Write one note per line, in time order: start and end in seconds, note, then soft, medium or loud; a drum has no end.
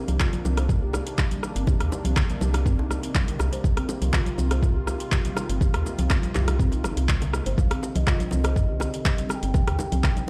0.00 10.30 C3 medium
0.00 10.30 D#3 medium
0.00 7.54 A#3 medium
0.00 3.63 D4 medium
0.08 0.17 C2 medium
0.08 closed hi-hat medium
0.08 high conga loud
0.08 shaker soft
0.20 0.32 F4 loud
0.20 kick loud
0.20 cross-stick medium
0.20 clap loud
0.20 low bongo loud
0.20 low conga medium
0.20 shaker medium
0.33 closed hi-hat soft
0.33 high conga loud
0.33 shaker soft
0.45 1.02 C2 medium
0.45 0.56 C4 loud
0.45 low bongo medium
0.45 high conga loud
0.45 shaker medium
0.57 0.68 C5 medium
0.57 cross-stick medium
0.57 closed hi-hat medium
0.57 high bongo medium
0.57 shaker soft
0.69 kick loud
0.69 mid tom medium
0.69 low bongo medium
0.69 shaker soft
0.82 0.89 G4 loud
0.93 1.05 G4 medium
0.93 cross-stick medium
0.93 high bongo medium
0.93 low bongo medium
0.93 shaker medium
1.07 closed hi-hat medium
1.07 shaker soft
1.18 1.30 G4 medium
1.18 kick loud
1.18 clap loud
1.18 low bongo medium
1.18 shaker soft
1.31 1.43 G3 medium
1.31 closed hi-hat soft
1.31 high conga medium
1.31 shaker soft
1.43 cross-stick medium
1.43 low bongo medium
1.43 shaker medium
1.56 1.74 G1 medium
1.56 1.67 C4 medium
1.56 closed hi-hat medium
1.56 shaker soft
1.67 1.75 G4 medium
1.67 kick loud
1.67 low bongo medium
1.67 shaker soft
1.80 1.89 D#2 medium
1.80 cross-stick medium
1.80 closed hi-hat soft
1.92 2.04 G4 medium
1.92 high bongo medium
1.92 low bongo medium
1.92 shaker medium
2.05 2.14 C2 medium
2.05 2.16 C4 medium
2.05 closed hi-hat medium
2.05 high conga loud
2.05 shaker soft
2.16 kick loud
2.16 cross-stick medium
2.16 clap loud
2.16 low bongo medium
2.16 low conga medium
2.16 shaker soft
2.30 2.41 G3 medium
2.30 closed hi-hat soft
2.30 high conga loud
2.30 shaker soft
2.41 2.98 C2 medium
2.41 2.53 G4 medium
2.41 low bongo loud
2.41 high conga loud
2.41 shaker medium
2.54 cross-stick medium
2.54 closed hi-hat medium
2.54 high bongo medium
2.54 high conga medium
2.54 shaker soft
2.66 2.73 C4 loud
2.66 kick loud
2.66 mid tom medium
2.66 low bongo medium
2.66 shaker soft
2.79 2.89 D#4 loud
2.79 high bongo medium
2.91 cross-stick medium
2.91 low bongo medium
2.91 shaker medium
3.03 3.14 C4 medium
3.03 closed hi-hat medium
3.03 shaker soft
3.15 3.27 G3 medium
3.15 kick loud
3.15 clap loud
3.15 low bongo medium
3.15 shaker soft
3.28 closed hi-hat soft
3.28 low conga medium
3.28 shaker soft
3.39 3.49 C2 medium
3.39 3.51 G4 medium
3.39 cross-stick medium
3.39 low bongo medium
3.39 shaker medium
3.53 3.64 C5 loud
3.53 closed hi-hat medium
3.53 shaker soft
3.64 3.74 C2 loud
3.64 7.56 F4 medium
3.64 kick loud
3.64 low bongo medium
3.64 shaker soft
3.77 3.84 C4 loud
3.77 cross-stick medium
3.77 closed hi-hat soft
3.89 4.00 G4 medium
3.89 high bongo medium
3.89 low bongo medium
3.89 shaker medium
4.02 4.11 C2 loud
4.02 closed hi-hat medium
4.02 high conga medium
4.02 shaker soft
4.13 4.26 F4 loud
4.13 kick loud
4.13 cross-stick medium
4.13 clap loud
4.13 low bongo medium
4.13 low conga loud
4.13 shaker soft
4.26 closed hi-hat soft
4.26 high conga loud
4.26 shaker soft
4.38 4.95 C2 medium
4.38 4.50 C4 loud
4.38 low bongo medium
4.38 high conga loud
4.38 shaker medium
4.51 4.62 C5 medium
4.51 cross-stick medium
4.51 closed hi-hat medium
4.51 high bongo medium
4.51 shaker soft
4.63 kick loud
4.63 mid tom medium
4.63 low bongo medium
4.63 shaker soft
4.75 4.82 G4 loud
4.87 4.99 G4 medium
4.87 cross-stick medium
4.87 high bongo medium
4.87 low bongo medium
4.87 shaker medium
5.00 closed hi-hat medium
5.00 shaker soft
5.12 5.23 G4 medium
5.12 kick medium
5.12 clap loud
5.12 low bongo medium
5.12 shaker soft
5.24 5.36 G3 medium
5.24 closed hi-hat soft
5.24 high conga medium
5.24 shaker soft
5.37 cross-stick medium
5.37 low bongo medium
5.37 shaker medium
5.49 5.68 G1 medium
5.49 5.60 C4 medium
5.49 closed hi-hat medium
5.49 shaker soft
5.61 5.68 G4 medium
5.61 kick loud
5.61 low bongo medium
5.61 shaker soft
5.74 5.83 D#2 loud
5.74 cross-stick loud
5.74 closed hi-hat soft
5.86 5.97 G4 medium
5.86 high bongo medium
5.86 low bongo medium
5.86 shaker medium
5.98 6.07 C2 loud
5.98 6.09 C4 medium
5.98 closed hi-hat medium
5.98 high conga loud
5.98 shaker soft
6.10 kick loud
6.10 cross-stick medium
6.10 clap loud
6.10 low bongo medium
6.10 low conga medium
6.10 shaker medium
6.22 6.34 G3 medium
6.22 closed hi-hat soft
6.22 high conga loud
6.22 shaker soft
6.35 6.86 C2 medium
6.35 6.46 G4 medium
6.35 clap soft
6.35 mid tom medium
6.35 low bongo medium
6.35 high conga loud
6.35 low conga medium
6.35 shaker medium
6.47 cross-stick medium
6.47 closed hi-hat medium
6.47 high bongo medium
6.47 high conga medium
6.47 shaker soft
6.59 6.66 C4 loud
6.59 kick loud
6.59 mid tom medium
6.59 low bongo medium
6.59 shaker soft
6.72 6.83 D#4 loud
6.72 closed hi-hat soft
6.72 high bongo medium
6.72 shaker soft
6.84 6.94 G1 medium
6.84 cross-stick medium
6.84 low bongo medium
6.84 high conga medium
6.84 shaker medium
6.97 7.41 C2 medium
6.97 7.07 C4 medium
6.97 closed hi-hat medium
6.97 shaker soft
7.09 7.20 G3 medium
7.09 kick medium
7.09 clap loud
7.09 low bongo medium
7.09 shaker medium
7.21 closed hi-hat soft
7.21 high bongo medium
7.21 low conga medium
7.21 shaker soft
7.33 7.45 G4 medium
7.33 cross-stick medium
7.33 low bongo medium
7.33 shaker medium
7.46 7.55 G1 loud
7.46 7.57 C5 loud
7.46 closed hi-hat medium
7.46 shaker soft
7.58 7.68 C2 loud
7.58 10.30 D3 loud
7.58 10.30 C4 medium
7.58 7.97 F5 loud
7.58 kick loud
7.58 low bongo medium
7.58 shaker soft
7.71 7.77 C4 loud
7.71 cross-stick loud
7.71 closed hi-hat soft
7.83 7.94 G4 medium
7.83 high bongo medium
7.83 low bongo medium
7.83 shaker medium
7.95 8.04 C2 loud
7.95 8.32 D#5 medium
7.95 closed hi-hat medium
7.95 high conga loud
7.95 shaker soft
8.07 8.19 F4 loud
8.07 kick loud
8.07 cross-stick medium
8.07 clap loud
8.07 low bongo medium
8.07 low conga loud
8.07 shaker medium
8.20 closed hi-hat soft
8.20 high conga loud
8.20 shaker soft
8.31 8.89 C2 medium
8.31 8.43 C4 medium
8.31 9.32 D#5 loud
8.31 low bongo medium
8.31 high conga loud
8.31 shaker medium
8.44 8.55 C5 medium
8.44 cross-stick loud
8.44 closed hi-hat medium
8.44 high bongo medium
8.44 shaker soft
8.56 kick loud
8.56 mid tom medium
8.56 low bongo medium
8.56 shaker soft
8.69 8.75 G4 loud
8.80 8.92 G4 medium
8.80 cross-stick medium
8.80 high bongo medium
8.80 low bongo medium
8.80 shaker medium
8.94 closed hi-hat medium
8.94 shaker soft
9.05 9.17 G4 medium
9.05 kick loud
9.05 clap medium
9.05 low bongo medium
9.05 shaker medium
9.18 9.29 G3 medium
9.18 closed hi-hat soft
9.18 high conga medium
9.18 shaker soft
9.29 9.35 A#5 medium
9.29 cross-stick medium
9.29 low bongo medium
9.29 shaker medium
9.34 10.30 G5 loud
9.43 9.61 G1 medium
9.43 9.53 C4 medium
9.43 closed hi-hat medium
9.43 shaker soft
9.54 9.62 G4 medium
9.54 kick loud
9.54 low bongo medium
9.54 shaker medium
9.67 9.76 D#2 loud
9.67 cross-stick loud
9.67 closed hi-hat soft
9.79 9.91 G4 medium
9.79 high bongo medium
9.79 low bongo loud
9.79 shaker medium
9.92 10.01 C2 loud
9.92 10.03 C4 medium
9.92 closed hi-hat medium
9.92 high conga loud
9.92 shaker soft
10.03 kick loud
10.03 cross-stick medium
10.03 clap loud
10.03 low bongo medium
10.03 low conga medium
10.03 shaker medium
10.16 10.28 G3 medium
10.16 closed hi-hat soft
10.16 high conga loud
10.16 shaker soft